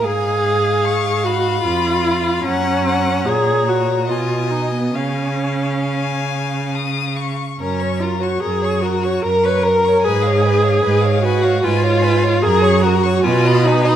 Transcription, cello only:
0.03 G#2
1.65 F2
2.44 F#2
3.26 A#2
4.10 B2
4.94 C#3
7.59 F#2
8.42 F#2
9.22 F#2
10.05 G#2
10.83 G#2
11.64 G#2
12.42 F#2
13.23 B2

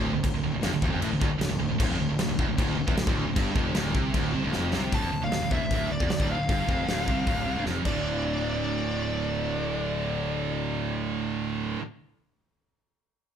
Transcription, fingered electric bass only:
Already playing: D1
0.15 D1
0.24 D1
0.34 D1
0.44 D1
0.55 D1
0.64 F1
0.74 D1
0.82 E1
0.94 F1
1.03 A1
1.13 D1
1.22 D1
1.32 muted fingered electric bass stroke
1.42 D1
1.52 D1
1.61 D1
1.70 D1
1.80 D1
1.91 F1
1.99 D1
2.10 D1
2.20 D1
2.29 D1
2.39 E1
2.49 D1
2.58 D1
2.78 D1
2.88 E1
2.98 D1
3.07 D1
3.27 D1
3.36 G1
3.56 F1
3.76 D1
3.95 C2
4.15 D1
4.35 C2
4.44 D1
4.54 F1
4.74 C2
4.92 D1
5.04 F1
5.13 D1
5.23 D1
5.32 D1
5.43 D1
5.51 E1
5.62 D1
5.71 D1
5.92 D1
6.01 E1
6.12 D1
6.20 D1
6.40 D1
6.49 G1
6.68 F1
6.88 D1
7.08 C2
7.27 D1
7.47 C2
7.57 D1
7.67 F1
7.85 D1

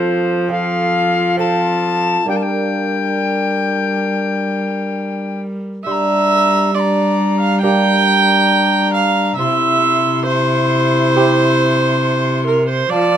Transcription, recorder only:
Already playing: C5
0.51 F5
1.38 A5
2.29 G5
2.36 A5
2.42 G5
5.86 C6
5.91 A#5
6.75 C6
6.79 A#5
7.62 A#5
9.39 C6
10.27 C6
12.91 A5

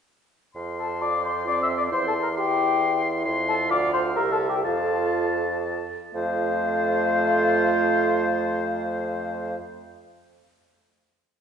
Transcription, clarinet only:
0.78 A4
1.01 D5
1.24 C5
1.47 D5
1.63 E5
1.77 D5
1.91 C5
2.07 A4
2.23 A#4
2.37 G4
3.48 A4
3.70 D5
3.93 C5
4.16 A#4
4.32 A4
4.49 G4
4.64 F4
6.15 F4

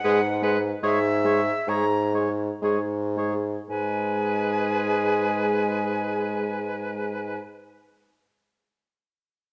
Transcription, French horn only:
0.04 G#3
0.42 G#3
0.82 G#3
1.25 G#3
1.68 G#3
2.13 G#3
2.62 G#3
3.16 G#3
3.69 G#3

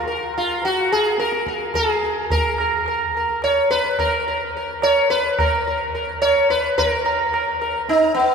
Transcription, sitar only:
0.07 A#4
0.38 F4
0.65 F#4
0.92 G#4
1.19 A#4
1.48 A#4
1.75 G#4
2.31 A#4
2.60 A#4
2.88 A#4
3.17 A#4
3.44 C#5
3.71 B4
3.99 A#4
4.28 A#4
4.57 A#4
4.83 C#5
5.10 B4
5.40 A#4
5.67 A#4
5.95 A#4
6.22 C#5
6.50 B4
6.78 A#4
7.04 A#4
7.33 A#4
7.62 A#4
7.89 D#4
8.14 B3

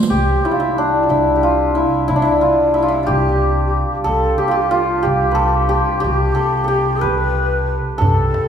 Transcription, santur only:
Already playing: C5 D5
0.10 G4
0.45 E4
0.51 F4
0.60 E4
0.78 D4
1.10 E4
1.36 G4
1.43 F4
1.75 E4
2.08 E4
2.16 D4
2.22 E4
2.41 F4
2.74 E4
2.83 F4
2.88 E4
3.03 F4 G4
4.04 A4
4.38 G4
4.48 F4 G4
4.71 F4
5.03 G4
5.31 A4 B4
5.69 G4
6.00 G4
6.35 A4
6.64 G4 A4
7.01 B4
7.98 A4

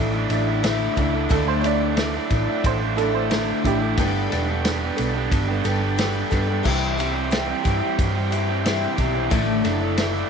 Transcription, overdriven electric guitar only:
Already playing: A3 D4 E4
0.13 A3 D4 E4
0.30 D3 A3 D4 E4
0.47 A3 D4 E4
0.63 A2 D3 A3 D4 E4
0.97 D3 A3 D4 E4
1.12 A3 D4 E4
1.28 D3 A3 D4 E4
1.62 D3 A3 D4 E4
1.80 A3 D4 E4
1.95 D3 A3 D4 E4
2.13 A3 D4 E4
2.47 A3 D4 E4
2.79 A3 D4 E4
2.96 D3 A3 D4 E4
3.11 A3 D4 E4
3.29 D3 A3 D4 E4
3.63 D3 A3 D4 E4
3.79 A3 D4 E4
3.96 G2 D3 G3 B3 D4 G4
4.29 G3 B3 D4 G4
4.47 G3 B3 D4 G4
4.64 G2 D3 G3 B3 D4 G4
4.81 G3 B3 D4 G4
5.13 G3 B3 D4 G4
5.47 G3 B3 D4 G4
5.64 G3 B3 D4 G4
5.81 G3 B3 D4 G4
5.98 G2 D3 G3 B3 D4 G4
6.31 G3 B3 D4 G4
6.49 G3 B3 D4 G4
6.65 C3 E3 G3 C4 G4
6.98 E3 G3 C4 G4
7.14 G3 C4 G4
7.31 C3 E3 G3 C4 G4
7.47 G3 C4 G4
7.81 G3 C4 G4
8.15 G3 C4 G4
8.31 E3 G3 C4 G4
8.48 G3 C4 G4
8.64 C3 E3 G3 C4 G4
8.96 E3 G3 C4 G4
9.13 G3 C4 G4
9.30 A2 D3 A3 D4 E4
9.64 D3 A3 D4 E4
9.81 A3 D4 E4
9.97 A2 D3 A3 D4 E4
10.13 A3 D4 E4

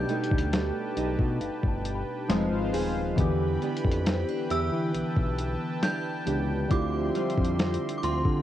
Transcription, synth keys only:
Already playing: B2 A3 D4 D#4 G4
2.29 F3 G#3 C4 D#4
3.16 D3 E3 B3
3.20 G4
6.26 E3 B3 D4 G4
6.68 D3 C4 E4 F4
6.73 G4

